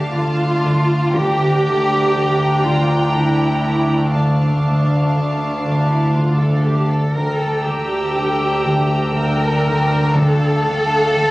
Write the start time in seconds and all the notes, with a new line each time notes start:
Already playing: D2 D4 G4 F5 A5
0.16 D3 F4
0.65 D3
1.15 D2 D3 D4 G4 G5 A#5
1.66 D3
2.15 D3
2.65 D3 F4
3.15 D3 E4
3.66 D3
4.13 D3 D4 F5 A5
4.66 D3
5.16 D3
5.65 D3
5.90 E4
6.15 D3 F4
6.39 A4
6.65 D3 G4
6.90 A4
7.14 D2 D3 D4 A#4 G5 A#5 E6
7.40 A4
7.65 D3 G4
8.16 D3
8.66 D3
9.16 D3 A#4
9.66 D3
10.14 D3 A4 F5 A5
10.65 D3
11.15 D3